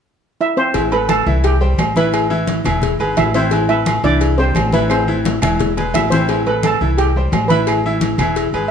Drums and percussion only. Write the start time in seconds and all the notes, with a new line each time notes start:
0.74 cowbell, high conga, low agogo
0.92 high conga, low agogo
1.09 cowbell, high conga, low timbale, low agogo, claves
1.27 high conga
1.44 cowbell, high conga, low agogo
1.61 high conga
1.78 cowbell, high conga, low timbale, low agogo, claves
1.96 cowbell, high conga
2.13 cowbell, high conga, low agogo, claves
2.31 high conga
2.47 cowbell, high conga, low timbale, low agogo
2.65 cowbell, low conga, low agogo, claves
2.82 cowbell, high conga, low conga, low agogo
2.99 high conga, low agogo
3.17 cowbell, high conga, low timbale, low agogo, claves
3.34 cowbell
3.51 cowbell, high conga, low agogo
3.69 high conga, low agogo
3.86 cowbell, high conga, low timbale, low agogo, claves
4.04 high conga
4.21 cowbell, high conga, low agogo
4.38 high conga
4.55 cowbell, high conga, low timbale, low agogo, claves
4.73 cowbell, high conga
4.90 cowbell, high conga, low agogo, claves
5.08 high conga
5.25 cowbell, high bongo, high conga, low timbale, low agogo
5.42 cowbell, high bongo, low conga, low agogo, claves
5.60 cowbell, low bongo, high conga, low conga, low agogo
5.77 low bongo, high conga, low agogo
5.94 cowbell, low bongo, high conga, low timbale, low agogo, claves
6.12 cowbell, low bongo, high conga
6.29 cowbell, high conga, low agogo
6.46 high conga, low agogo
6.63 cowbell, high conga, low timbale, low agogo, claves
6.81 high conga
6.98 cowbell, high conga, low agogo
7.16 high conga
7.33 cowbell, high conga, low timbale, low agogo, claves
7.50 cowbell, high conga
7.67 cowbell, high conga, low agogo, claves
7.84 high conga
8.01 cowbell, high conga, low timbale, low agogo
8.19 cowbell, low conga, low agogo, claves
8.36 cowbell, high conga, low agogo
8.54 high conga, low agogo